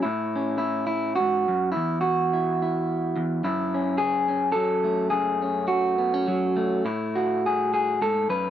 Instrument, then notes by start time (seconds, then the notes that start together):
clean electric guitar
0.02 A2 E4
0.35 C#4
0.58 E4
0.87 E4
1.16 G#2 F#4
1.48 F#2
1.72 E4
1.76 E2
2.01 F#4
2.33 E4
2.62 E4
3.16 E2
3.44 F#2 E4
3.74 C#4
3.98 G#4
4.28 C#4
4.52 F#3 A4
4.84 A3
5.10 F#2 G#4
5.42 C#4
5.68 F#4
5.98 B3
6.14 C#4
6.28 F#3
6.56 A3
6.85 A2 E4
7.16 F#4
7.46 G#4
7.74 G#4
8.01 G#2 A4
8.29 F#2 B4